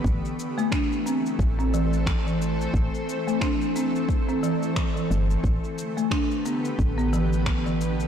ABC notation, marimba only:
X:1
M:4/4
L:1/16
Q:"Swing 16ths" 1/4=89
K:Am
V:1 name="Marimba"
z3 A, D z C3 C E, z2 E, z2 | z3 A, D z C3 C E, z2 E, z2 | z3 A, D z B,3 B, E, z2 E, z2 |]